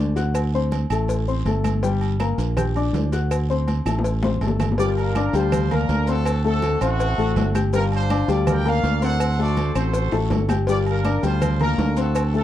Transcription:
Already playing: fingered electric bass D2, upright piano D6
0.16 upright piano F#4 F#5 F#6, cowbell, low agogo, short guiro, maracas
0.35 cowbell, high conga, low agogo, long guiro, claves, maracas
0.54 upright piano C4 C5 C6, high conga, maracas
0.72 cowbell, high conga, low agogo, short guiro, maracas
0.90 fingered electric bass A1, upright piano A3 A4 A5, low agogo, short guiro, claves, maracas
1.08 cowbell, high conga, long guiro, maracas
1.28 upright piano C4 C5 C6, high conga, maracas
1.45 fingered electric bass G1, upright piano A3 A4 A5, cowbell, high conga, low agogo, short guiro, maracas
1.64 cowbell, high conga, low agogo, short guiro, claves, maracas
1.83 upright piano G3 G4 G5, cowbell, long guiro, maracas
2.01 high conga, low agogo, maracas
2.20 upright piano A#3 A#4 A#5, cowbell, high conga, low agogo, short guiro, claves, maracas
2.38 fingered electric bass A#1, cowbell, short guiro, maracas
2.57 upright piano G4 G5 G6, cowbell, high conga, low conga, low agogo, long guiro, claves, maracas
2.76 upright piano D4 D5 D6, high conga, low agogo, maracas
2.93 fingered electric bass D2, cowbell, high conga, low timbale, short guiro, maracas
3.12 upright piano F#4 F#5 F#6, cowbell, high conga, low agogo, short guiro, maracas
3.31 cowbell, high conga, low agogo, long guiro, claves, maracas
3.50 upright piano C4 C5 C6, high conga, maracas
3.68 cowbell, high conga, low agogo, short guiro, maracas
3.85 fingered electric bass A1, upright piano A3 A4 A5, high bongo, low agogo, short guiro, claves, maracas
3.99 high bongo
4.04 cowbell, high conga, long guiro, maracas
4.23 upright piano C4 C5 C6, low bongo, high conga, maracas
4.36 high conga
4.41 fingered electric bass G1, upright piano A3 A4 A5, cowbell, low agogo, short guiro, maracas
4.47 low bongo, low conga
4.60 cowbell, low bongo, low conga, low agogo, short guiro, claves, maracas
4.72 low bongo
4.78 upright piano G3 G4 G5, horn section F4 A#4 D5, cowbell, high conga, long guiro, maracas
4.98 horn section D4 F4 A#4, high conga, low agogo, maracas
5.15 upright piano D4 D5 D6, cowbell, high conga, low agogo, short guiro, claves, maracas
5.33 fingered electric bass D2, upright piano G3 G4 G5, horn section F4 C5, cowbell, short guiro, maracas
5.52 cowbell, high conga, low conga, low agogo, long guiro, claves, maracas
5.71 upright piano A#3 A#4 A#5, horn section D4 F4 A#4, high conga, low conga, low agogo, maracas
5.89 fingered electric bass D2, cowbell, high conga, short guiro, maracas
6.07 upright piano C4 C5 C6, horn section C4 F#4 A4, cowbell, high conga, low agogo, short guiro, maracas
6.25 cowbell, high conga, low agogo, long guiro, claves, maracas
6.44 upright piano A3 A4 A5, horn section C4 F#4 A4, high conga, maracas
6.62 cowbell, high conga, low agogo, short guiro, maracas
6.81 fingered electric bass A1, horn section A3 C4 F#4, upright piano C4 C5 C6, low agogo, short guiro, claves, maracas
6.99 cowbell, high conga, long guiro, maracas
7.18 fingered electric bass A1, upright piano A3 A4 A5, high conga, maracas
7.36 fingered electric bass G1, cowbell, high conga, low timbale, low agogo, short guiro, maracas
7.54 upright piano G4 G5 G6, cowbell, high conga, low agogo, short guiro, claves, maracas
7.73 upright piano G3 G4 G5, horn section D4 F4 A#4, cowbell, long guiro, maracas
7.92 horn section F4 C5, high conga, low agogo, maracas
8.10 upright piano D4 D5 D6, cowbell, high conga, low agogo, short guiro, claves, maracas
8.28 fingered electric bass D2, upright piano G3 G4 G5, horn section D5, cowbell, short guiro, maracas
8.47 horn section A#4 D5 G5, cowbell, high conga, low conga, low agogo, long guiro, claves, maracas
8.65 upright piano A#3 A#4 A#5, horn section A#4 D5 F5, high conga, low agogo, maracas
8.83 fingered electric bass D2, cowbell, high conga, short guiro, maracas
9.02 upright piano C4 C5 C6, horn section A4 C5 F#5, cowbell, high conga, low agogo, short guiro, maracas
9.20 cowbell, high conga, low agogo, long guiro, claves, maracas
9.39 upright piano A3 A4 A5, horn section F#4 A4 D5, high conga, maracas
9.57 cowbell, high conga, low agogo, short guiro, maracas
9.75 fingered electric bass A1, upright piano C4 C5 C6, horn section F#4 A4 C5, high conga, low agogo, short guiro, claves, maracas
9.94 cowbell, high conga, long guiro, maracas
10.12 fingered electric bass A1, upright piano A3 A4 A5, high bongo, high conga, maracas
10.30 fingered electric bass G1, cowbell, high bongo, high conga, low timbale, low agogo, short guiro, maracas
10.49 upright piano G4 G5 G6, cowbell, low bongo, high conga, low agogo, short guiro, claves, maracas
10.67 upright piano G3 G4 G5, horn section F4 A#4 D5, cowbell, high conga, long guiro, maracas
10.86 horn section D4 F4 A#4, high conga, low agogo, maracas
11.04 upright piano D4 D5 D6, cowbell, high conga, low agogo, short guiro, claves, maracas
11.22 fingered electric bass D2, upright piano G3 G4 G5, horn section F4 C5, cowbell, high conga, short guiro, maracas
11.42 cowbell, high conga, low conga, low agogo, long guiro, claves, maracas
11.60 upright piano A#3 A#4 A#5, horn section D4 F4 A#4, high conga, low conga, low agogo, maracas
11.78 fingered electric bass D2, cowbell, high conga, low timbale, short guiro, maracas
11.96 upright piano C4 C5 C6, horn section C4 F#4 A4, cowbell, high conga, low agogo, short guiro, maracas
12.15 cowbell, low agogo, long guiro, claves, maracas
12.34 upright piano A3 A4 A5, horn section C4 F#4 A4, high conga, maracas

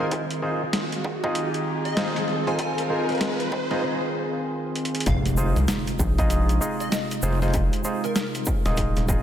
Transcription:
Already playing: analog synth pad D#3 C4 F4 G#4, riser
0.00 clav D#4 F4 G#4 C5
0.11 kick, closed hi-hat
0.30 closed hi-hat
0.42 clav D#4 F4 G#4 C5
0.73 snare, closed hi-hat
0.92 closed hi-hat
1.04 kick
1.24 clav D#4 F4 G#4 D#5, kick
1.35 closed hi-hat
1.54 closed hi-hat
1.85 digital synth lead D#5, closed hi-hat
1.97 clav D#4 F4 G#4 C5, snare, closed hi-hat
2.16 closed hi-hat
2.28 snare
2.47 clav D#4 F4 G#4 C5, digital synth lead G#5, closed hi-hat
2.59 digital synth lead G#5, kick, closed hi-hat
2.78 closed hi-hat
2.90 clav D#4 F4 G#4 C5
3.09 closed hi-hat
3.12 closed hi-hat
3.15 closed hi-hat
3.18 snare, closed hi-hat
3.21 closed hi-hat
3.40 closed hi-hat
3.52 kick
3.71 clav D#4 F4 G#4 D#5, snare
4.75 closed hi-hat
4.85 closed hi-hat
4.95 closed hi-hat
5.00 closed hi-hat
5.06 analog synth bass F1, analog synth pad C3 G#3 D#4 F4, digital synth lead F5, kick, closed hi-hat, impact, shaker
5.26 closed hi-hat, shaker
5.37 clav D#4 F4 G#4 C5, shaker
5.56 analog synth bass C2, closed hi-hat, shaker
5.68 snare, closed hi-hat, shaker
5.87 closed hi-hat, shaker
5.99 analog synth bass A#1, kick, shaker
6.18 clav D#4 F4 G#4 D#5, kick, closed hi-hat, shaker
6.30 closed hi-hat, shaker
6.49 closed hi-hat, shaker
6.61 clav D#4 F4 G#4 D#5, shaker
6.80 digital synth lead D#5, closed hi-hat, shaker
6.92 snare, closed hi-hat, shaker
7.11 closed hi-hat, shaker
7.23 analog synth bass F1, clav D#4 F4 G#4 C5, snare, shaker
7.33 snare
7.42 clav D#4 F4 G#4 C5, snare, closed hi-hat, shaker
7.48 snare
7.54 kick, closed hi-hat, shaker
7.73 closed hi-hat, shaker
7.84 clav D#4 F4 G#4 C5, shaker
8.04 digital synth lead A#4, closed hi-hat, shaker
8.15 digital synth lead A#4, snare, closed hi-hat, shaker
8.35 closed hi-hat, shaker
8.46 kick, shaker
8.65 analog synth bass D#1, clav D#4 F4 G#4 D#5, snare, closed hi-hat, shaker
8.77 kick, closed hi-hat, shaker
8.96 analog synth bass D#1, snare, closed hi-hat, shaker
9.08 clav D#4 F4 G#4 D#5, kick, shaker

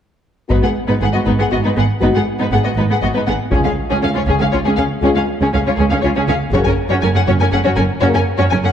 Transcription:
0.48 double bass section G#1, cello section G#2, french horn section B3 F#4, viola section B3, violin section D#4 B4, taiko
0.63 cello section G#2, viola section B3, violin section G#4 F#5
0.88 cello section G#2, viola section B3, violin section D#4 B4
1.01 double bass section G#1, cello section G#2, viola section B3, violin section G#4 F#5
1.12 cello section G#2, viola section B3, violin section F#4 D#5
1.25 double bass section G#1, cello section G#2, viola section B3, violin section D#4 B4, taiko
1.39 cello section G#2, viola section B3, violin section G#4 F#5
1.51 double bass section G#1, cello section G#2, viola section B3, violin section F#4 D#5
1.63 cello section G#2, viola section B3, violin section D#4 B4
1.77 double bass section G#1, cello section G#2, viola section B3, violin section G#4 F#5
2.01 double bass section G#1, cello section G#2, french horn section B3 F#4, viola section B3, violin section D#4 B4
2.15 cello section G#2, viola section B3, violin section G#4 F#5
2.40 cello section G#2, viola section B3, violin section D#4 B4
2.51 double bass section G#1, cello section G#2, viola section B3, violin section G#4 F#5
2.63 cello section G#2, viola section B3, violin section F#4 D#5
2.76 double bass section G#1, cello section G#2, viola section B3, violin section D#4 B4
2.90 cello section G#2, viola section B3, violin section G#4 F#5
3.01 double bass section G#1, cello section G#2, viola section B3, violin section F#4 D#5
3.14 cello section G#2, viola section B3, violin section D#4 B4
3.26 double bass section G#1, cello section G#2, viola section B3, violin section G#4 F#5
3.51 double bass section C#2, cello section C#2, french horn section G#3 F4, viola section C#4, violin section C#4 G#4, taiko
3.64 cello section C#2, viola section C#4, violin section G#4 F5
3.90 cello section C#2, violin section C#4 G#4, viola section C#4
4.02 double bass section C#2, cello section C#2, viola section C#4, violin section G#4 F5
4.15 cello section C#2, viola section C#4, violin section F4 C#5
4.27 double bass section C#2, cello section C#2, viola section C#4, violin section C#4 G#4, taiko
4.40 cello section C#2, viola section C#4, violin section G#4 F5
4.51 double bass section C#2, cello section C#2, viola section C#4, violin section F4 C#5
4.64 cello section C#2, violin section C#4 G#4, viola section C#4
4.77 double bass section C#2, cello section C#2, viola section C#4, violin section G#4 F5
5.01 double bass section C#2, cello section C#2, french horn section G#3 F4, violin section C#4 G#4, viola section C#4
5.15 cello section C#2, viola section C#4, violin section G#4 F5
5.41 cello section C#2, viola section C#4, violin section C#4 G#4
5.53 cello section C#2, double bass section C#2, viola section C#4, violin section G#4 F5
5.66 cello section C#2, viola section C#4, violin section F4 C#5
5.76 double bass section C#2, cello section C#2, viola section C#4, violin section C#4 G#4
5.90 cello section C#2, viola section C#4, violin section G#4 F5
6.01 cello section C#2, double bass section C#2, viola section C#4, violin section F4 C#5
6.16 cello section C#2, violin section C#4 G#4, viola section C#4
6.28 double bass section C#2, cello section C#2, viola section C#4, violin section G#4 F5
6.52 double bass section F#1, cello section F#2, french horn section A#3 G#4, viola section C#4, violin section F#4 C#5, taiko
6.64 cello section F#2, viola section C#4, violin section A#4 G#5
6.89 cello section F#2, viola section C#4, violin section F#4 C#5
7.01 double bass section F#1, cello section F#2, viola section C#4, violin section A#4 G#5
7.15 cello section F#2, viola section C#4, violin section G#4 F#5
7.27 double bass section F#1, cello section F#2, viola section C#4, violin section F#4 C#5
7.40 cello section F#2, viola section C#4, violin section A#4 G#5
7.52 double bass section F#1, cello section F#2, viola section C#4, violin section G#4 F#5
7.64 cello section F#2, viola section C#4, violin section F#4 C#5
7.75 double bass section F#1, cello section F#2, viola section C#4, violin section A#4 G#5
8.00 double bass section F#1, cello section F#2, french horn section A#3, viola section C#4, violin section F#4 C#5
8.04 french horn section G#4
8.14 cello section F#2, viola section C#4, violin section A#4 G#5
8.38 cello section F#2, viola section C#4, violin section F#4 C#5
8.49 double bass section F#1, cello section F#2, violin section A#4 G#5
8.53 viola section C#4
8.63 cello section F#2, viola section C#4, violin section G#4 F#5

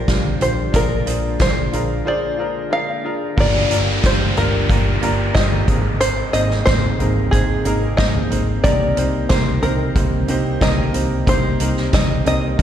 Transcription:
Already playing: grand piano A#2 D4 F4 G4 A#4 C5, analog synth pad D3 G3 A#3 F4, five-string banjo A#4
0.07 picked electric bass A#1, grand piano D4 F4 G4 C5, kick, snare, closed hi-hat
0.25 floor tom
0.40 picked electric bass A#1, grand piano D4 F4 G4 C5, five-string banjo C5, closed hi-hat
0.73 picked electric bass A#1, grand piano A#2 D4 F4 G#4 A#4, analog synth pad G#3, five-string banjo A#4, kick, closed hi-hat
1.05 picked electric bass A#1, grand piano D4 F4 G#4 C5, closed hi-hat
1.39 picked electric bass A#1, grand piano D4 F4 G#4 C5, five-string banjo C5, kick, snare, closed hi-hat
1.72 picked electric bass A#1, grand piano D4 F4 G#4 A#4, closed hi-hat
2.05 grand piano D4 F4 G#4 C5, five-string banjo D5
2.38 grand piano D4 F4 G#4 A#4
2.70 grand piano D4 F4 G#4 A#4, five-string banjo F5
3.03 grand piano D4 F4 G#4 A#4
3.37 picked electric bass G1, grand piano G2 A#3 D4 F4 G4 A#4, analog synth pad D3 G3 A#3 F4, five-string banjo D5, kick, crash, downlifter
3.69 picked electric bass G1, grand piano A#3 D4 F4 G4 A#4, closed hi-hat
4.02 picked electric bass G1, grand piano A#3 D4 F4 G4 C5, five-string banjo C5, kick, snare, closed hi-hat
4.35 picked electric bass G1, grand piano A#3 D4 F4 G4 A#4, five-string banjo A#4, closed hi-hat, floor tom
4.69 picked electric bass G1, grand piano A#3 D4 F4 G4 A#4, kick, closed hi-hat
5.01 picked electric bass G1, grand piano A#3 D4 F4 G4 A#4, closed hi-hat
5.34 picked electric bass G1, grand piano D3 A#3 F4 G4 C5, five-string banjo D#5, kick, snare, closed hi-hat
5.52 floor tom
5.68 picked electric bass G#1, grand piano G#2 A#3 C4 D#4 G#4 A#4, analog synth pad C3 G#3 A#3 D#4, kick, closed hi-hat
6.00 five-string banjo C5, closed hi-hat
6.33 picked electric bass G#1, grand piano A#3 C4 D#4 G#4 C5, five-string banjo D#5, closed hi-hat
6.50 snare
6.66 picked electric bass G#1, grand piano A#3 C4 D#4 G#4 C5, five-string banjo C5, kick, snare, closed hi-hat
6.99 picked electric bass G#1, grand piano A#3 C4 D#4 G#4 A#4, closed hi-hat, floor tom
7.31 picked electric bass G#1, grand piano A#3 C4 D#4 G#4 C5, five-string banjo G#4, kick, closed hi-hat
7.65 picked electric bass G#1, grand piano A#3 C4 D#4 G#4 A#4, closed hi-hat
7.97 picked electric bass G#1, grand piano A#3 C4 D#4 G#4 C5, five-string banjo D#5, kick, snare, closed hi-hat
8.15 floor tom
8.30 picked electric bass G#1, grand piano A#3 C4 D#4 G#4 C5, closed hi-hat
8.64 picked electric bass C2, grand piano C3 A#3 C4 D#4 G4 A#4, analog synth pad G3, five-string banjo D5, kick, closed hi-hat
8.96 picked electric bass C2, grand piano A#3 C4 D#4 G4 C5, closed hi-hat
9.29 picked electric bass C2, grand piano A#3 C4 D#4 G4 A#4, five-string banjo C5, kick, snare, closed hi-hat
9.62 picked electric bass C2, grand piano A#3 C4 D#4 G4 C5, five-string banjo A#4, closed hi-hat, floor tom
9.95 picked electric bass C2, grand piano A#3 C4 D#4 G4 C5, kick, closed hi-hat
10.28 picked electric bass C2, grand piano A#3 C4 D#4 G4 C5, closed hi-hat
10.61 picked electric bass C2, grand piano A#3 C4 D#4 G4 A#4, five-string banjo D#5, kick, snare, closed hi-hat
10.78 floor tom
10.93 picked electric bass C2, grand piano A#3 C4 D#4 G4 C5, closed hi-hat
11.26 picked electric bass C2, grand piano C3 A#3 C4 D#4 G4 C5, analog synth pad C4, five-string banjo C5, kick, closed hi-hat
11.60 picked electric bass C2, grand piano A#3 C4 D#4 G4 A#4, closed hi-hat
11.77 snare
11.92 picked electric bass C2, grand piano A#3 C4 D#4 G4 C5, five-string banjo D#5, kick, snare, closed hi-hat
12.25 picked electric bass C2, grand piano A#3 C4 D#4 G4 A#4, five-string banjo D#5, closed hi-hat
12.57 picked electric bass C2, grand piano A#3 C4 D#4 G4

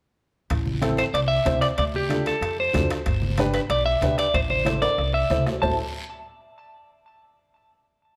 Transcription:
0.50 upright bass A1, bombo low, bombo rim, high timbale, long guiro
0.66 high conga
0.82 upright piano C4 E4 A4, bombo rim, high conga, high timbale, short guiro
0.97 clean electric guitar C5, bombo rim, high timbale, short guiro
1.14 upright bass C2, clean electric guitar D5, bombo rim, high timbale, long guiro
1.28 clean electric guitar E5
1.45 upright bass C2, upright piano C4 E4 C5, bombo low, bombo rim, high conga, high timbale, short guiro
1.61 clean electric guitar D5, bombo rim, high timbale, short guiro
1.78 upright bass D2, clean electric guitar D5, bombo low, bombo rim, high timbale, long guiro
1.94 clean electric guitar G4, high conga
2.09 upright piano D4 F4 A4, bombo rim, high conga, high timbale, short guiro
2.26 clean electric guitar A4, bombo rim, high timbale, short guiro
2.41 upright bass F2, bombo rim, high timbale, long guiro
2.60 clean electric guitar C5
2.73 upright bass F2, upright piano D4 F4 A4, bombo low, bombo rim, high conga, high timbale, low timbale, short guiro
2.90 bombo rim, high timbale, short guiro
3.06 upright bass G1, bombo low, bombo rim, high timbale, long guiro
3.22 high conga
3.38 upright piano D4 G4 B4, bombo rim, high conga, high timbale, short guiro
3.54 clean electric guitar B4, bombo rim, high timbale, short guiro
3.70 upright bass B1, clean electric guitar D5, bombo rim, high timbale, long guiro
3.86 clean electric guitar E5
4.02 upright bass B1, upright piano D4 G4 B4, bombo low, bombo rim, high conga, high timbale, short guiro
4.18 clean electric guitar D5, bombo rim, high timbale, short guiro
4.34 upright bass A1, clean electric guitar C5, bombo low, bombo rim, high timbale, long guiro
4.50 clean electric guitar C5, high conga
4.65 upright piano E4 A4 C5, bombo rim, high conga, high timbale, short guiro
4.82 clean electric guitar D5, bombo rim, high timbale, short guiro
4.98 upright bass C2, bombo rim, long guiro
5.14 clean electric guitar E5
5.30 upright bass C2, upright piano E4 A4 C5, bombo low, bombo rim, high conga, short guiro
5.46 bombo rim, low timbale, short guiro
5.62 upright bass A1, upright piano E4 A4 C5, clean electric guitar A5, bombo low, low conga, low timbale, long guiro

